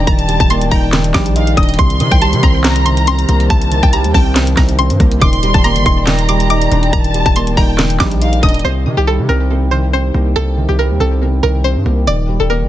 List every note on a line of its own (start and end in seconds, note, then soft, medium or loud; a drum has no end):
0.00 0.07 D#3 loud
0.00 8.60 D#3 medium
0.00 0.28 G3 medium
0.00 0.50 A#3 loud
0.00 0.93 D4 medium
0.00 0.71 D#4 loud
0.00 1.75 D5 medium
0.00 1.75 G5 medium
0.07 0.39 D#1 loud
0.07 0.91 D#3 medium
0.07 0.67 A5 loud
0.07 0.38 A#5 loud
0.07 kick loud
0.07 closed hi-hat medium
0.19 closed hi-hat medium
0.28 1.13 G3 medium
0.28 closed hi-hat loud
0.40 0.63 D#1 loud
0.40 0.48 A5 medium
0.40 kick loud
0.40 closed hi-hat medium
0.50 1.57 A#3 medium
0.50 0.67 C6 medium
0.50 closed hi-hat medium
0.61 0.71 D1 loud
0.61 closed hi-hat medium
0.71 1.13 D#1 loud
0.71 1.35 D#4 medium
0.71 0.92 G5 medium
0.71 1.12 A#5 medium
0.71 kick medium
0.71 open hi-hat medium
0.93 1.79 D#3 medium
0.93 snare loud
0.93 clap loud
0.93 closed hi-hat medium
1.04 closed hi-hat medium
1.14 1.56 A#1 loud
1.14 1.79 G3 medium
1.14 1.55 D6 medium
1.14 kick loud
1.14 snare medium
1.14 clap medium
1.14 closed hi-hat medium
1.26 closed hi-hat medium
1.36 1.79 D#4 loud
1.36 1.56 F5 medium
1.36 closed hi-hat medium
1.47 closed hi-hat medium
1.57 1.78 D#1 loud
1.57 1.79 D4 medium
1.57 1.78 D#5 medium
1.57 1.74 D#6 medium
1.57 kick medium
1.57 closed hi-hat medium
1.63 closed hi-hat medium
1.69 closed hi-hat medium
1.74 closed hi-hat soft
1.79 2.02 C2 loud
1.79 2.63 C3 loud
1.79 5.18 A#4 medium
1.79 5.18 C5 medium
1.79 2.60 C6 loud
1.79 2.10 C6 loud
1.79 kick loud
1.79 closed hi-hat medium
1.90 closed hi-hat medium
2.00 2.11 C3 medium
2.00 2.84 D#3 medium
2.00 closed hi-hat loud
2.11 2.34 C2 loud
2.11 2.19 G5 medium
2.11 kick loud
2.11 closed hi-hat medium
2.21 3.29 G3 medium
2.21 2.38 A5 medium
2.21 closed hi-hat medium
2.33 2.42 C3 loud
2.33 closed hi-hat medium
2.43 3.25 C2 loud
2.43 3.06 C4 medium
2.43 2.83 A#5 medium
2.43 kick medium
2.43 closed hi-hat medium
2.64 3.49 C3 medium
2.64 3.46 A#5 loud
2.64 snare loud
2.64 clap medium
2.64 closed hi-hat medium
2.76 closed hi-hat medium
2.86 3.70 D#3 medium
2.86 3.02 C6 medium
2.86 closed hi-hat medium
2.97 closed hi-hat medium
3.07 4.13 C4 medium
3.07 3.48 C6 loud
3.07 closed hi-hat medium
3.19 closed hi-hat medium
3.28 3.49 C2 loud
3.28 4.36 A#3 medium
3.28 closed hi-hat medium
3.40 closed hi-hat soft
3.50 3.82 C2 loud
3.50 4.35 C3 loud
3.50 4.11 A5 loud
3.50 3.81 A5 loud
3.50 kick loud
3.50 closed hi-hat medium
3.61 closed hi-hat medium
3.72 4.56 D#3 medium
3.72 closed hi-hat medium
3.83 4.06 C2 loud
3.83 3.91 G5 medium
3.83 kick loud
3.83 closed hi-hat medium
3.93 5.00 G3 medium
3.93 4.10 A#5 medium
3.93 closed hi-hat medium
4.04 4.14 D#2 loud
4.04 closed hi-hat medium
4.14 4.56 C2 loud
4.14 4.77 C4 medium
4.14 4.35 G5 medium
4.14 4.55 A5 medium
4.14 kick medium
4.14 open hi-hat medium
4.35 5.22 C3 medium
4.35 snare loud
4.35 clap medium
4.35 closed hi-hat medium
4.47 closed hi-hat medium
4.57 4.92 C2 loud
4.57 5.20 D#3 medium
4.57 4.74 A#5 medium
4.57 kick medium
4.57 snare medium
4.57 clap medium
4.57 closed hi-hat medium
4.69 closed hi-hat medium
4.79 5.21 C4 medium
4.79 5.19 C6 medium
4.79 closed hi-hat medium
4.90 4.99 G2 loud
4.90 closed hi-hat medium
5.00 5.21 C2 loud
5.00 5.22 A#3 medium
5.00 kick loud
5.00 closed hi-hat medium
5.11 closed hi-hat soft
5.21 5.53 D#1 loud
5.21 6.06 D#3 loud
5.21 8.61 D5 medium
5.21 8.61 G5 medium
5.21 6.03 C6 loud
5.21 5.52 D6 loud
5.21 kick loud
5.21 closed hi-hat medium
5.33 closed hi-hat medium
5.43 6.27 G3 medium
5.43 closed hi-hat loud
5.54 5.77 D#1 loud
5.54 5.62 A5 medium
5.54 kick loud
5.54 closed hi-hat medium
5.64 6.71 A#3 medium
5.64 5.81 A#5 medium
5.64 closed hi-hat medium
5.76 5.85 G1 loud
5.76 closed hi-hat medium
5.86 6.68 D#1 loud
5.86 6.49 D#4 medium
5.86 6.26 C6 medium
5.86 kick medium
5.86 closed hi-hat medium
6.07 6.91 D#3 loud
6.07 6.89 A#5 medium
6.07 snare loud
6.07 clap medium
6.07 closed hi-hat medium
6.19 closed hi-hat medium
6.29 7.13 G3 medium
6.29 6.45 D6 medium
6.29 closed hi-hat medium
6.40 closed hi-hat medium
6.50 7.56 D#4 loud
6.50 6.90 D6 medium
6.50 closed hi-hat medium
6.62 closed hi-hat medium
6.72 6.92 D#1 loud
6.72 7.79 D4 medium
6.72 closed hi-hat medium
6.83 closed hi-hat soft
6.93 7.24 D#1 loud
6.93 7.77 D#3 medium
6.93 7.53 A5 loud
6.93 7.24 A#5 loud
6.93 kick loud
6.93 closed hi-hat medium
7.04 closed hi-hat medium
7.14 7.99 G3 medium
7.14 closed hi-hat loud
7.26 7.49 D#1 loud
7.26 7.34 A5 medium
7.26 kick loud
7.26 closed hi-hat medium
7.36 8.43 A#3 medium
7.36 7.53 C6 medium
7.36 closed hi-hat medium
7.47 7.57 D1 loud
7.47 closed hi-hat medium
7.57 7.98 D#1 loud
7.57 8.20 D#4 medium
7.57 7.78 G5 medium
7.57 7.97 A#5 medium
7.57 kick medium
7.57 open hi-hat medium
7.78 8.64 D#3 medium
7.78 snare loud
7.78 clap medium
7.78 closed hi-hat medium
7.90 closed hi-hat medium
8.00 8.41 A#1 loud
8.00 8.65 G3 medium
8.00 8.40 D6 medium
8.00 kick loud
8.00 snare loud
8.00 clap medium
8.00 closed hi-hat medium
8.11 closed hi-hat medium
8.22 8.64 D#4 loud
8.22 8.42 F5 medium
8.22 closed hi-hat medium
8.33 closed hi-hat medium
8.43 8.64 D#1 loud
8.43 8.64 D4 medium
8.43 8.63 D#5 medium
8.43 8.60 D#6 medium
8.43 kick medium
8.43 closed hi-hat medium
8.49 closed hi-hat medium
8.54 closed hi-hat medium
8.59 closed hi-hat soft
8.64 8.87 C2 loud
8.64 9.49 C3 medium
8.64 12.04 D#4 medium
8.64 12.04 C5 medium
8.64 8.95 C5 medium
8.64 12.04 G5 medium
8.86 8.97 C3 loud
8.86 9.70 D#3 medium
8.97 9.20 C2 loud
8.97 9.05 G4 medium
9.07 10.14 G3 medium
9.07 9.24 A4 medium
9.19 9.28 C3 loud
9.29 10.11 C2 loud
9.29 9.92 C4 medium
9.29 9.69 A#4 medium
9.50 10.35 C3 medium
9.71 10.56 D#3 medium
9.71 9.88 C5 medium
9.93 10.99 C4 medium
9.93 10.33 C5 medium
10.14 10.35 C2 loud
10.14 11.21 A#3 medium
10.36 10.67 C2 loud
10.36 11.20 C3 loud
10.36 10.67 A4 loud
10.57 11.41 D#3 medium
10.69 10.92 C2 loud
10.69 10.76 G4 medium
10.79 11.86 G3 medium
10.79 10.95 A#4 medium
10.90 11.00 D#2 loud
11.00 11.41 C2 loud
11.00 11.63 C4 medium
11.00 11.41 A4 medium
11.22 12.07 C3 medium
11.43 11.77 C2 loud
11.43 12.06 D#3 medium
11.43 11.60 A#4 medium
11.64 12.07 C4 medium
11.64 12.05 C5 medium
11.76 11.85 G2 loud
11.86 12.06 C2 loud
11.86 12.07 A#3 medium
12.07 12.39 D#1 loud
12.07 12.69 D#3 medium
12.07 12.69 D5 medium
12.07 12.38 D5 loud
12.07 12.69 G5 medium
12.29 12.69 G3 medium
12.40 12.63 D#1 loud
12.40 12.48 A4 medium
12.50 12.69 A#3 medium
12.50 12.67 A#4 medium
12.61 12.69 G1 loud